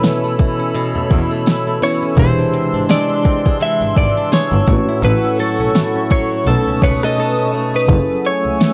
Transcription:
Already playing: nylon-string guitar B2 E3 A3, tine electric piano B2 B3 C#4 E4 A4, analog synth pad A4 C#5 B5 E6
0.03 nylon-string guitar C#4, snare, closed hi-hat
0.24 nylon-string guitar A3
0.39 nylon-string guitar E3, kick, closed hi-hat
0.59 nylon-string guitar C#4
0.74 nylon-string guitar B2, closed hi-hat
0.95 double bass E2, nylon-string guitar A3
1.10 double bass E2, nylon-string guitar E3, kick
1.31 nylon-string guitar A3
1.46 nylon-string guitar C#4, snare, closed hi-hat
1.67 nylon-string guitar A3
1.81 tine electric piano B2 B3 C#4 E4 A4, nylon-string guitar E3, clean electric guitar C#5
2.03 nylon-string guitar C#4
2.16 double bass E1, tine electric piano C3 E3 D4, nylon-string guitar E3, analog synth pad G#3 D4 C6 E6, clean electric guitar C5, kick, closed hi-hat
2.21 tine electric piano G4 G#4
2.38 nylon-string guitar D4
2.53 nylon-string guitar C4, closed hi-hat
2.74 double bass G#1, nylon-string guitar D4
2.89 nylon-string guitar G#4, clean electric guitar D5, snare, closed hi-hat
3.10 nylon-string guitar D4
3.25 nylon-string guitar C4, kick, closed hi-hat
3.46 nylon-string guitar G#4, kick
3.60 nylon-string guitar E3, clean electric guitar E5, closed hi-hat
3.81 double bass G#1, nylon-string guitar D4
3.96 double bass G#1, clean electric guitar D5, kick
4.17 nylon-string guitar D4
4.32 nylon-string guitar G#4, clean electric guitar C#5, snare, closed hi-hat
4.52 double bass G1, nylon-string guitar D4
4.66 double bass A1, tine electric piano A2 A3 B3, nylon-string guitar A2, analog synth pad A4 F#5 C#6, kick
4.71 tine electric piano F#4 B4
4.75 tine electric piano C#4
4.89 nylon-string guitar E4
5.03 double bass A1, nylon-string guitar A2, clean electric guitar B4, closed hi-hat
5.24 nylon-string guitar C#4
5.39 nylon-string guitar F#3, clean electric guitar A4, closed hi-hat
5.60 double bass B1, nylon-string guitar C#4
5.75 nylon-string guitar E4, snare, closed hi-hat
5.96 nylon-string guitar C#4
6.11 nylon-string guitar F#3, clean electric guitar C#5, kick, closed hi-hat
6.32 nylon-string guitar E4
6.44 double bass B1, tine electric piano B2 A3 C#4, nylon-string guitar B2, clean electric guitar A4, analog synth pad B4 A5 D#6, closed hi-hat
6.49 tine electric piano D#4 B4
6.67 double bass C#2, nylon-string guitar C#4
6.82 double bass C#2, nylon-string guitar A3, clean electric guitar B4 C#5, kick
7.03 nylon-string guitar C#4, clean electric guitar A4 D#5, cross-stick
7.18 nylon-string guitar D#4, clean electric guitar A4
7.39 nylon-string guitar C#4
7.54 nylon-string guitar A3
7.74 nylon-string guitar D#4, clean electric guitar B4
7.87 double bass F#1, tine electric piano F#3 C#4 E4, analog synth pad A3 F#5 G#5 E6, kick, closed hi-hat
7.92 tine electric piano G#4 A4
8.25 clean electric guitar C#5, closed hi-hat
8.46 double bass C#2
8.60 snare, closed hi-hat

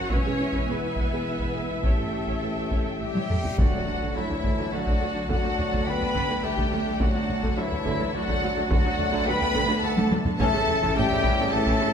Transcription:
0.09 double bass section E1, trombone section E3 G#3, french horn section B3 B4, cello section C#4, viola section B4 E5, violin section C#5 G#5, taiko
0.25 double bass section E1, viola section G#4
0.40 double bass section E1, viola section E4
0.53 double bass section E1, viola section B4, taiko
0.67 double bass section E1, cello section B3, viola section G#4, violin section B4
0.82 double bass section E1, viola section E4
0.96 double bass section E1, viola section B4, taiko
1.11 double bass section E1, viola section G#4
1.26 double bass section E1, viola section E4
1.39 double bass section E1, viola section B4, taiko
1.55 double bass section E1, viola section G#4
1.69 double bass section E1, viola section E4
1.83 double bass section A1, cello section A3, trombone section A3, french horn section C#4 G4, violin section A4 G5, viola section C#5, taiko, reverse cymbal
1.98 double bass section A1, viola section A4
2.12 double bass section A1, viola section G4
2.27 double bass section A1, viola section C#5, taiko
2.41 double bass section A1, viola section A4
2.56 double bass section A1, viola section G4
2.70 double bass section A1, viola section C#5, taiko
2.86 double bass section A1, viola section A4
2.99 double bass section A1, french horn section G3, violin section G4 G5, trumpet G4, viola section G4, flute E5
3.14 double bass section A1, viola section C#5, taiko high
3.28 double bass section A1, viola section A4, taiko low-mid
3.44 double bass section A1, viola section G4, taiko low
3.57 double bass section D2, cello section D2, timpani D3, trombone section D3 A3, viola section D3 A3, french horn section F#3, string section A3 D4 A4 A5, violin section F#4 F#5, trumpet F#4, flute D5, taiko, impact
3.73 cello section D2, viola section D3 F#3
3.87 double bass section D2, cello section D2, viola section D3, taiko low
4.02 cello section D2, viola section D3 A3, taiko
4.15 double bass section D2, cello section D2, viola section D3 F#3, french horn section E3, violin section E4 E5, trumpet E4, flute C#5
4.29 cello section D2, viola section D3, taiko low
4.44 double bass section D2, cello section D2, viola section D3 A3, taiko
4.59 cello section D2, viola section D3 F#3
4.71 cello section D2, double bass section D2, viola section D3, french horn section F#3, violin section F#4 F#5, trumpet F#4, flute D5
4.87 cello section D2, viola section D3 A3, taiko
5.00 double bass section D2, cello section D2, viola section D3 F#3
5.14 cello section D2, viola section D3
5.28 double bass section D2, cello section D2, viola section D3 A3, french horn section F#3, trumpet F#4, violin section F#4 F#5, flute D5, taiko
5.42 cello section D2, viola section D3 F#3
5.57 cello section D2, double bass section D2, viola section D3, taiko low
5.71 cello section D2, viola section D3 A3, taiko
5.85 double bass section D2, cello section D2, viola section D3 F#3, french horn section B3, trumpet B4, violin section B4 B5, flute G5
6.01 cello section D2, viola section D3, taiko low
6.14 double bass section D2, cello section D2, viola section D3 A3, taiko
6.29 cello section D2, viola section D3 F#3
6.43 double bass section D2, cello section D2, viola section D3, french horn section G3, violin section G4 G5, trumpet G4, flute E5
6.57 cello section D2, viola section D3 A3, taiko
6.71 double bass section D2, cello section D2, viola section D3 F#3
6.86 cello section D2, viola section D3
7.00 double bass section D2, cello section D2, viola section D3 A3, french horn section F#3, trumpet F#4, violin section F#4 F#5, flute D5, taiko
7.14 cello section D2, viola section D3 F#3
7.28 cello section D2, double bass section D2, viola section D3, taiko low
7.43 cello section D2, viola section D3 A3, taiko
7.57 double bass section D2, cello section D2, viola section D3 F#3, french horn section E3, violin section E4 E5, trumpet E4, flute C#5
7.71 cello section D2, viola section D3, taiko low
7.85 double bass section D2, cello section D2, viola section D3 A3, taiko
7.99 cello section D2, viola section D3 F#3
8.13 cello section D2, double bass section D2, viola section D3, french horn section F#3, violin section F#4 F#5, trumpet F#4, flute D5
8.28 cello section D2, viola section D3 A3, taiko
8.42 cello section D2, double bass section D2, viola section D3 F#3
8.57 cello section D2, viola section D3
8.68 double bass section D2, cello section D2, viola section D3 A3, trombone section D3 A3, french horn section F#3, string section A3 D4 A4 A5, violin section F#4 F#5, trumpet F#4, flute D5, taiko
8.85 cello section D2, viola section D3 F#3
8.99 double bass section D2, cello section D2, viola section D3, taiko low
9.13 cello section D2, viola section D3 A3, taiko
9.27 cello section D2, double bass section D2, viola section D3 F#3, french horn section B3, trumpet B4, violin section B4 B5, flute G5
9.41 cello section D2, viola section D3, taiko low
9.55 double bass section D2, cello section D2, viola section D3 A3, taiko
9.69 cello section D2, viola section D3 F#3
9.83 double bass section D2, cello section D2, viola section D3, french horn section A3, violin section A4 A5, trumpet A4, flute F#5
9.96 cello section D2, viola section D3 A3, taiko high
10.11 double bass section D2, cello section D2, viola section D3 F#3, taiko high
10.25 cello section D2, viola section D3, taiko low
10.38 double bass section A1, cello section A2, viola section E3 C#4, trombone section E3 C#4, french horn section A3, string section C#4 E4, violin section A4 A5, trumpet A4, flute E5, taiko
10.53 cello section A2, viola section C#3 A3
10.68 double bass section A1, cello section A2, viola section C#3 E3, taiko low
10.81 cello section A2, viola section E3 C#4, taiko
10.95 double bass section A1, cello section A2, viola section C#3 A3, french horn section G3, violin section G4 G5, trumpet G4, flute E5
11.10 cello section A2, viola section C#3 E3, taiko low
11.24 double bass section A1, cello section A2, viola section E3 C#4, taiko
11.40 cello section A2, viola section C#3 A3
11.51 double bass section A1, cello section A2, viola section C#3 E3, french horn section A3, trumpet A4, violin section A4 A5, flute E5
11.66 cello section A2, viola section E3 C#4, taiko
11.81 double bass section A1, cello section A2, viola section C#3 A3

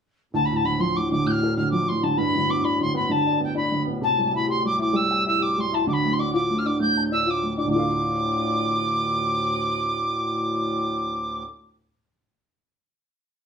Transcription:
0.33 harmonium D2 A2, upright piano D2, tin whistle A5
0.45 tin whistle B5
0.50 upright piano A2
0.56 tin whistle A5
0.65 upright piano D3, tin whistle B5
0.79 upright piano F3, tin whistle C6
0.96 upright piano A2, tin whistle D6
1.11 upright piano D3, tin whistle D6
1.25 upright piano A2, tin whistle G6
1.30 tin whistle F6
1.43 upright piano A4
1.56 upright piano D3, tin whistle F6
1.71 upright piano F3, tin whistle D6
1.88 upright piano A2, tin whistle C6
2.03 upright piano D3, tin whistle A5
2.17 upright piano G2, tin whistle B5
2.35 upright piano D3
2.49 upright piano B3, tin whistle D6
2.64 upright piano D4, tin whistle B5
2.81 upright piano D3, tin whistle C6
2.95 upright piano B3, tin whistle B5
3.10 upright piano D3, tin whistle A5
3.27 upright piano D5
3.40 upright piano B3, tin whistle G5
3.55 upright piano D4, tin whistle B5
3.72 upright piano D3
3.87 upright piano B3
4.01 upright piano C3, tin whistle A5
4.19 upright piano G3
4.33 upright piano E4, tin whistle B5
4.47 upright piano G4, tin whistle C6
4.65 upright piano G3, tin whistle D6
4.79 upright piano E4, tin whistle D6
4.93 upright piano G3, tin whistle E6
5.11 upright piano G5
5.26 upright piano E4, tin whistle E6
5.40 upright piano G4, tin whistle D6
5.58 upright piano G3, tin whistle C6
5.73 upright piano E4, tin whistle A5
5.87 upright piano D3, tin whistle D6
5.93 tin whistle B5
6.05 upright piano A3
6.13 tin whistle C6
6.19 upright piano D4, tin whistle D6
6.33 upright piano F4, tin whistle D6
6.51 upright piano A3
6.58 tin whistle F6
6.66 upright piano D4, tin whistle D6
6.80 upright piano A3, tin whistle G6
6.97 upright piano A5
7.12 upright piano D4, tin whistle E6
7.26 upright piano F4, tin whistle E6
7.30 tin whistle D6
7.43 upright piano A3
7.57 upright piano D4, tin whistle D6
7.65 upright piano D2 A2
7.70 harmonium D2 A2, upright piano D4 F4, tin whistle D6
7.76 upright piano A4 F5

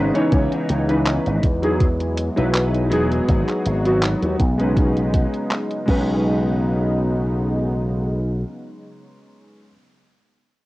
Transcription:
Already playing: analog synth pad C#3 F#3 G#3 B3 D#4, electric grand piano G#3 C#4 D#4 B4
0.14 electric grand piano E3 C#4 D#4 C#5, closed hi-hat
0.32 slap bass C#2, analog synth pad E3 G#3 D#4, kick, closed hi-hat
0.52 closed hi-hat
0.69 slap bass C#2, closed hi-hat
0.88 electric grand piano E3 C#4 D#4 B4, closed hi-hat
1.06 clap, closed hi-hat
1.26 slap bass G#1, closed hi-hat
1.43 slap bass E2, analog synth pad E3 F#3, kick, closed hi-hat
1.62 electric grand piano F#3 D#4 E4 G#4, closed hi-hat
1.80 kick, closed hi-hat
2.00 closed hi-hat
2.17 closed hi-hat
2.36 slap bass B1, electric grand piano F#3 D#4 E4 B4, closed hi-hat
2.54 clap, closed hi-hat
2.74 closed hi-hat
2.90 slap bass E1, electric grand piano F#3 B3 D#4 G#4, closed hi-hat
3.12 closed hi-hat
3.28 slap bass G#1, analog synth pad B3 F#4, kick, closed hi-hat
3.49 clap, closed hi-hat
3.66 slap bass G#1, closed hi-hat
3.85 electric grand piano F#3 B3 D#4 F#4, closed hi-hat
4.03 clap, closed hi-hat
4.22 slap bass D#2, closed hi-hat
4.40 slap bass B1, analog synth pad C#3 G#3 D#4, kick, closed hi-hat
4.58 electric grand piano G#3 C#4 D#4 B4, closed hi-hat
4.77 kick, closed hi-hat
4.97 closed hi-hat
5.14 kick, closed hi-hat
5.34 closed hi-hat
5.51 clap, closed hi-hat
5.71 closed hi-hat
5.86 slap bass B1, analog synth pad C#3 F#3 G#3 B3 D#4, electric grand piano G#3 C#4 D#4, kick, crash
5.90 electric grand piano B4

